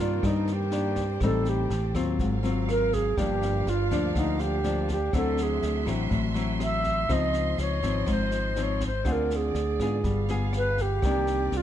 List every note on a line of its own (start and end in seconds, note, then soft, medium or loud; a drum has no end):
0.00 0.22 G2 medium
0.00 0.22 C3 medium
0.00 0.69 D#3 medium
0.00 0.69 A#3 medium
0.00 3.14 C4 medium
0.00 0.69 D4 medium
0.00 0.28 F4 medium
0.00 1.20 A#4 medium
0.00 2.17 C5 medium
0.00 1.21 D5 medium
0.23 1.17 G2 medium
0.23 1.19 G2 medium
0.23 0.54 D#4 medium
0.23 kick medium
0.23 cross-stick medium
0.23 snare soft
0.47 snare soft
0.53 1.23 G4 medium
0.71 1.04 D#3 medium
0.71 1.04 A#3 medium
0.71 1.04 D4 medium
0.71 snare soft
0.96 kick soft
0.96 snare soft
1.20 1.67 A1 medium
1.20 2.18 A2 medium
1.20 1.71 G3 medium
1.20 1.71 C4 medium
1.20 1.71 D#4 medium
1.20 2.19 G4 medium
1.20 2.18 A4 medium
1.20 1.51 A4 medium
1.20 kick medium
1.20 cross-stick medium
1.20 snare soft
1.45 snare soft
1.49 1.97 G4 medium
1.70 1.93 A1 medium
1.70 snare soft
1.94 2.17 D#2 medium
1.94 2.40 F#3 medium
1.94 2.40 C4 medium
1.94 2.41 F4 medium
1.94 kick soft
1.94 cross-stick medium
1.94 snare soft
2.19 3.13 G#1 medium
2.19 3.15 G#2 medium
2.19 5.11 A#4 medium
2.19 3.15 F5 medium
2.19 kick medium
2.19 snare soft
2.43 3.13 F#3 medium
2.43 3.13 C4 medium
2.43 3.13 F4 medium
2.43 snare soft
2.69 2.95 A#4 medium
2.69 cross-stick medium
2.69 snare soft
2.93 3.19 G#4 medium
2.93 kick soft
2.93 snare soft
3.16 3.63 G1 loud
3.16 4.13 G2 medium
3.16 3.66 F3 medium
3.16 3.66 A#3 medium
3.16 7.06 D4 medium
3.16 3.67 D4 medium
3.16 5.11 G4 medium
3.16 3.71 G4 loud
3.16 5.11 F5 medium
3.16 kick medium
3.16 cross-stick medium
3.16 snare soft
3.42 snare soft
3.66 3.89 G1 medium
3.66 4.17 F4 medium
3.66 snare soft
3.91 4.14 D2 medium
3.91 4.61 F3 medium
3.91 4.61 A#3 medium
3.91 4.61 D4 medium
3.91 kick soft
3.91 snare soft
4.15 5.10 D2 medium
4.15 5.11 D3 medium
4.15 4.42 D#4 medium
4.15 kick medium
4.15 cross-stick medium
4.15 snare soft
4.39 4.89 G4 medium
4.39 snare soft
4.64 4.96 F3 medium
4.64 4.96 A#3 medium
4.64 4.96 D4 medium
4.64 snare soft
4.89 5.13 G4 medium
4.89 kick soft
4.89 snare soft
5.13 5.59 D2 medium
5.13 6.09 D3 medium
5.13 5.84 F#3 medium
5.13 5.83 C4 medium
5.13 5.84 E4 medium
5.13 7.08 F#4 medium
5.13 5.44 A4 medium
5.13 7.08 E5 medium
5.13 9.03 C6 medium
5.13 kick medium
5.13 cross-stick medium
5.13 snare soft
5.37 snare soft
5.43 5.89 G#4 medium
5.62 5.86 D2 medium
5.62 snare soft
5.85 6.10 A1 medium
5.85 6.31 F#3 medium
5.85 6.32 C4 medium
5.85 6.32 E4 medium
5.85 kick soft
5.85 cross-stick medium
5.85 snare soft
6.10 7.05 A1 medium
6.10 7.06 A2 medium
6.10 kick medium
6.10 snare soft
6.34 7.05 F#3 medium
6.34 7.05 C4 medium
6.34 7.06 E4 medium
6.34 snare soft
6.60 7.14 E5 medium
6.60 cross-stick medium
6.60 snare soft
6.84 kick soft
6.84 snare soft
7.08 7.55 C#2 medium
7.08 8.05 C#3 medium
7.08 7.79 F3 medium
7.08 7.79 C4 medium
7.08 7.80 D#4 medium
7.08 10.01 F4 medium
7.08 9.04 D#5 medium
7.08 kick medium
7.08 cross-stick medium
7.08 snare soft
7.12 7.60 D#5 loud
7.33 snare soft
7.58 7.82 C#2 medium
7.58 8.14 C#5 loud
7.58 snare soft
7.82 8.06 G#1 medium
7.82 8.53 F3 medium
7.82 8.53 C4 medium
7.82 8.53 D#4 medium
7.82 kick soft
7.82 snare soft
8.06 9.02 G#1 medium
8.06 9.03 G#2 medium
8.06 kick medium
8.06 cross-stick medium
8.06 snare soft
8.13 8.64 C5 medium
8.31 snare soft
8.56 8.88 F3 medium
8.56 8.89 C4 medium
8.56 8.89 D#4 medium
8.56 snare soft
8.62 8.84 C#5 medium
8.80 kick soft
8.80 snare soft
8.87 9.13 C5 medium
9.04 9.52 D2 medium
9.04 10.02 D3 medium
9.04 10.03 C4 medium
9.04 9.55 C4 medium
9.04 9.55 F4 medium
9.04 10.03 G#4 medium
9.04 9.55 G#4 medium
9.04 10.03 D5 medium
9.04 kick medium
9.04 cross-stick medium
9.04 snare soft
9.12 9.38 A#4 medium
9.30 snare soft
9.36 10.32 G#4 medium
9.55 9.78 D2 medium
9.55 snare soft
9.79 10.03 G#2 medium
9.79 10.26 B3 medium
9.79 10.26 F4 medium
9.79 10.26 G#4 medium
9.79 kick soft
9.79 cross-stick medium
9.79 snare soft
10.04 10.99 G1 medium
10.04 11.00 G3 medium
10.04 11.03 B3 medium
10.04 11.02 G#4 medium
10.04 11.02 F5 medium
10.04 kick medium
10.04 snare soft
10.29 10.99 B3 medium
10.29 10.99 F4 medium
10.29 11.00 G#4 medium
10.29 snare soft
10.53 cross-stick medium
10.53 snare soft
10.57 10.83 B4 loud
10.78 11.58 G4 medium
10.78 kick soft
10.78 snare soft
11.02 11.49 C2 medium
11.02 11.62 C3 medium
11.02 11.53 D#3 medium
11.02 11.53 A#3 medium
11.02 11.62 C4 medium
11.02 11.53 D4 medium
11.02 11.62 A#4 medium
11.02 11.62 D5 medium
11.02 kick medium
11.02 cross-stick medium
11.02 snare soft
11.27 snare soft
11.52 11.62 C2 medium
11.52 snare soft
11.57 11.62 F4 medium